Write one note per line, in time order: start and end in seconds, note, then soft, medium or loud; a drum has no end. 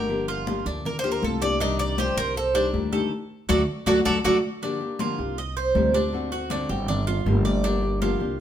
0.00 0.60 G1 medium
0.00 0.27 G4 medium
0.00 0.26 A#4 medium
0.08 0.46 D3 medium
0.08 0.46 F3 medium
0.08 0.47 A#3 medium
0.08 0.47 D4 medium
0.08 0.47 G4 medium
0.08 high conga soft
0.28 0.65 F4 medium
0.28 high conga soft
0.47 0.84 F3 soft
0.47 0.84 A#3 medium
0.47 0.85 D4 soft
0.47 0.85 G4 medium
0.47 high conga medium
0.66 1.19 D2 medium
0.66 1.03 D4 medium
0.85 0.98 A#4 medium
0.85 muted nylon-string guitar stroke medium
0.85 high conga soft
0.85 low conga medium
0.99 1.11 C5 loud
1.04 1.21 F3 medium
1.04 1.22 A#3 medium
1.04 1.22 D4 medium
1.04 1.41 F4 medium
1.04 1.22 G4 medium
1.04 high conga soft
1.12 1.23 A#4 medium
1.22 2.11 C2 loud
1.22 1.41 F3 soft
1.22 1.41 A#3 medium
1.22 1.41 D4 medium
1.22 1.40 G4 medium
1.22 1.42 A4 medium
1.22 high conga medium
1.41 1.60 F3 medium
1.41 1.60 A#3 medium
1.41 1.60 D4 medium
1.41 1.60 G4 medium
1.41 1.60 D5 medium
1.41 1.60 D5 loud
1.41 high conga medium
1.60 1.97 C3 medium
1.60 1.97 D#3 medium
1.60 1.97 G3 medium
1.60 1.97 D4 medium
1.60 1.98 D4 medium
1.60 1.98 G4 medium
1.60 1.79 D#5 loud
1.60 high conga soft
1.79 1.98 D5 medium
1.79 high conga soft
1.98 2.35 D#3 soft
1.98 2.35 G3 soft
1.98 2.35 D4 medium
1.98 2.17 G4 medium
1.98 2.35 G4 medium
1.98 2.17 C5 medium
1.98 high conga medium
2.17 2.70 C2 medium
2.17 2.36 A#4 loud
2.17 2.54 C5 medium
2.17 high conga soft
2.36 2.55 A4 medium
2.36 muted nylon-string guitar stroke medium
2.36 high conga soft
2.54 2.72 D#3 medium
2.54 2.73 G3 medium
2.54 2.91 D4 medium
2.54 2.73 D4 medium
2.54 2.73 G4 medium
2.54 2.66 C5 medium
2.54 high conga soft
2.73 3.09 D2 medium
2.73 2.92 D#3 medium
2.73 2.92 G3 medium
2.73 2.92 D4 medium
2.73 2.91 G4 medium
2.73 high conga medium
2.92 3.12 D#3 medium
2.92 3.11 G3 medium
2.92 3.11 D4 medium
2.92 3.11 G4 medium
2.92 3.11 A4 medium
2.92 high conga medium
3.49 3.63 D2 loud
3.49 3.61 F#3 medium
3.49 3.61 A3 medium
3.49 3.61 D4 loud
3.49 3.61 F#4 medium
3.49 3.61 F#4 loud
3.49 3.61 A4 medium
3.49 3.61 D5 medium
3.49 high conga medium
3.86 4.01 D2 loud
3.86 3.99 F#3 medium
3.86 3.99 A3 loud
3.86 3.99 D4 loud
3.86 3.99 D4 medium
3.86 3.99 F#4 medium
3.86 3.99 F#4 loud
3.86 3.99 A4 medium
3.86 3.99 D5 medium
3.86 high conga loud
4.05 4.20 D2 loud
4.05 4.18 F#3 loud
4.05 4.18 A3 loud
4.05 4.18 D4 medium
4.05 4.18 D4 loud
4.05 4.18 F#4 medium
4.05 4.18 A4 medium
4.05 4.18 D5 loud
4.05 high conga medium
4.24 4.39 D2 loud
4.24 4.37 F#3 loud
4.24 4.37 A3 loud
4.24 4.37 D4 loud
4.24 4.37 D4 medium
4.24 4.37 F#4 loud
4.24 4.37 A4 medium
4.24 4.37 A4 loud
4.24 4.37 D5 medium
4.24 high conga loud
4.62 4.80 D3 medium
4.62 4.81 F3 medium
4.62 4.81 A#3 medium
4.62 4.99 D4 medium
4.62 4.81 D4 medium
4.62 4.79 G4 medium
4.62 high conga soft
4.81 5.00 A#3 soft
4.81 5.00 D4 soft
4.81 4.99 G4 soft
4.81 high conga soft
4.99 5.18 D3 medium
4.99 5.18 F3 medium
4.99 5.19 A#3 medium
4.99 5.19 D4 medium
4.99 5.37 F4 medium
4.99 5.18 G4 medium
4.99 high conga medium
5.19 5.71 C2 medium
5.19 5.38 A#3 soft
5.19 5.38 D4 medium
5.19 5.37 G4 medium
5.19 high conga soft
5.37 5.56 D#5 medium
5.37 muted nylon-string guitar stroke medium
5.37 high conga soft
5.56 5.93 C5 medium
5.56 high conga soft
5.75 6.64 D2 loud
5.75 5.93 C3 medium
5.75 5.94 D#3 medium
5.75 5.94 G3 medium
5.75 5.93 C4 medium
5.75 5.92 G4 medium
5.75 high conga medium
5.94 6.13 G3 soft
5.94 6.13 C4 medium
5.94 6.31 D4 medium
5.94 6.12 G4 medium
5.94 high conga medium
6.12 6.31 D3 medium
6.12 6.31 A3 medium
6.12 6.31 C4 medium
6.12 6.30 F#4 medium
6.12 high conga soft
6.31 6.50 A3 soft
6.31 6.50 C4 soft
6.31 6.50 F#4 soft
6.31 6.50 F#4 medium
6.31 high conga soft
6.50 6.69 D3 medium
6.50 6.69 A3 medium
6.50 6.69 C4 medium
6.50 6.69 D4 medium
6.50 6.68 F#4 medium
6.50 high conga medium
6.69 7.22 G1 loud
6.69 6.89 A3 soft
6.69 6.88 C4 soft
6.69 6.88 F#4 medium
6.69 6.88 G4 medium
6.88 7.07 D4 medium
6.88 muted nylon-string guitar stroke medium
6.88 high conga soft
6.88 low conga medium
7.07 7.44 F4 medium
7.07 high conga soft
7.07 low conga medium
7.26 8.14 G1 loud
7.26 7.44 D3 medium
7.26 7.44 F3 medium
7.26 7.45 A#3 medium
7.26 7.44 D4 medium
7.26 7.44 G4 medium
7.26 high conga medium
7.45 7.63 A#3 soft
7.45 7.63 D4 medium
7.45 7.63 G4 medium
7.45 7.63 D5 medium
7.45 high conga medium
7.64 7.82 D3 medium
7.64 7.82 F3 medium
7.64 7.82 A#3 medium
7.64 8.01 D4 medium
7.64 7.82 D4 medium
7.64 7.81 G4 medium
7.64 high conga soft
7.82 8.01 A#3 soft
7.82 8.01 D4 soft
7.82 8.01 G4 medium
7.82 high conga soft
8.01 8.19 D3 medium
8.01 8.20 F3 medium
8.01 8.20 A#3 medium
8.01 8.20 D4 medium
8.01 8.38 F4 medium
8.01 8.19 G4 medium
8.01 high conga medium
8.20 8.40 C2 medium
8.20 8.39 A#3 soft
8.20 8.39 D4 medium
8.20 8.38 G4 medium
8.20 high conga soft